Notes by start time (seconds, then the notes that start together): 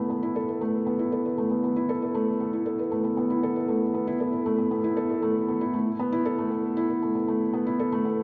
Already playing: A3 B3 E4 A4 B4
0.10 B3
0.23 E4
0.36 A4
0.48 B4
0.61 A3
0.87 B3
0.99 E4
1.12 A4
1.25 B4
1.38 A3
1.51 B3
1.64 B3
1.76 E4
1.89 A4
2.02 B4
2.15 A3
2.40 B3
2.53 E4
2.66 A4
2.79 B4
2.91 A3
3.04 B3
3.17 B3
3.30 E4
3.43 A4
3.56 B4
3.69 A3
3.94 B3
4.07 E4
4.20 A4
4.33 B4
4.46 A3
4.58 B3
4.71 B3
4.84 E4
4.97 A4
5.10 B4
5.22 A3
5.48 B3
5.61 E4
5.74 A3
5.99 B3
6.12 E4
6.25 A4
6.38 A3
6.51 B3
6.77 E4
6.90 A4
7.02 A3
7.15 B3
7.28 A3
7.54 B3
7.67 E4
7.79 A4
7.92 A3
8.05 B3